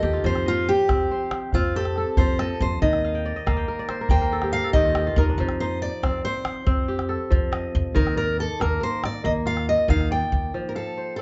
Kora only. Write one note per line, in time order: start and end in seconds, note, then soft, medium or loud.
0.00 0.29 D#3 medium
0.00 1.23 D#4 medium
0.00 0.13 F4 medium
0.00 1.44 G4 medium
0.00 1.23 A4 medium
0.13 1.65 F4 medium
0.25 2.18 F3 medium
0.46 1.53 D#5 medium
0.89 1.54 C4 medium
1.11 2.30 C5 medium
1.54 3.34 C4 medium
1.76 3.17 G4 medium
1.97 3.29 A4 medium
2.19 2.86 F3 medium
2.40 2.93 D#5 medium
2.82 4.73 D#3 medium
2.94 3.31 D#5 medium
3.04 3.47 F5 medium
3.15 3.56 G5 medium
3.25 3.79 D5 medium
3.36 3.85 D#5 medium
3.46 4.10 A#3 medium
3.46 4.47 F5 medium
3.57 4.50 G5 medium
3.68 4.01 A#4 medium
3.79 4.80 D5 medium
3.90 4.11 C5 medium
4.01 4.21 A#4 medium
4.11 4.70 A#3 medium
4.11 5.30 C5 medium
4.22 4.53 A#4 medium
4.32 4.59 A4 medium
4.43 4.74 G4 medium
4.54 5.81 A#4 medium
4.64 5.96 A4 medium
4.74 5.44 D#3 medium
4.74 4.95 G4 medium
4.85 5.06 F4 medium
4.96 6.37 G4 medium
5.07 6.58 F4 medium
5.18 5.61 D#4 medium
5.29 5.67 D4 medium
5.40 7.29 F3 medium
5.61 7.23 D#4 medium
6.03 6.66 C4 medium
6.25 7.44 C5 medium
6.66 8.46 C4 medium
6.88 8.29 G4 medium
7.09 8.41 A4 medium
7.30 8.01 F3 medium
7.52 8.22 D#5 medium
7.95 9.87 D#3 medium
8.16 9.27 D5 medium
8.60 9.24 A#3 medium
8.80 10.08 A#4 medium
9.24 11.17 A#3 medium
9.46 10.97 F4 medium
9.89 10.59 D#3 medium
10.11 11.22 D5 medium
10.54 11.22 F3 medium
10.75 11.22 F5 medium
10.97 11.22 C5 medium
11.19 11.22 C4 medium